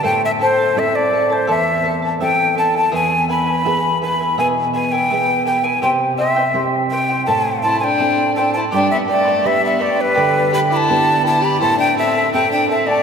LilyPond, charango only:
\new Staff \with { instrumentName = "Charango" } { \time 2/4 \key a \minor \tempo 4 = 83 <e' a' c'' e'' a''>8 <e' a' e'' a''>16 <e' a' a''>16 <e' a' e'' a''>8 <e' a' e'' a''>16 <e' a' a''>16 | <e' a' c'' e'' a''>8 <e' a' e'' a''>16 <e' a' a''>16 <e' a' e'' a''>8 <e' a' e'' a''>16 <e' a' a''>16 | <e' gis' b' e'' gis''>8 <e' b' e'' gis''>16 <e' b' gis''>16 <e' b' e'' gis''>8 <e' b' e'' gis''>16 <e' b' gis''>16 | <e' gis' b' e'' gis''>8 <e' b' e'' gis''>16 <e' b' gis''>16 <e' b' e''>8 <e' b' e'' gis''>16 <e' b' gis''>16 |
<e' g' c'' e'' g''>8 <e' c'' e'' g''>16 <e' c'' g''>16 <e' c'' e'' g''>8 <e' c'' e'' g''>16 <e' c'' g''>16 | <e' a' c'' e'' a''>8 <e' c'' e'' a''>16 <e' c'' a''>16 <e' c'' e'' a''>8 <e' c'' e'' a''>16 <e' c'' a''>16 | <g' b' d'' g'' b''>8 <b' d'' g'' b''>16 <b' d'' b''>16 <b' d'' g'' b''>8 <b' d'' g'' b''>16 <b' d'' b''>16 | <g' b' d'' g'' b''>8 <b' d'' g'' b''>16 <b' d'' b''>16 <b' d'' g'' b''>8 <b' d'' g'' b''>16 <b' d'' b''>16 |
<e' a' c'' e'' a''>8 <e' a' e'' a''>16 <e' a' a''>16 <e' a' e'' a''>8 <e' a' e'' a''>16 <e' a' a''>16 | }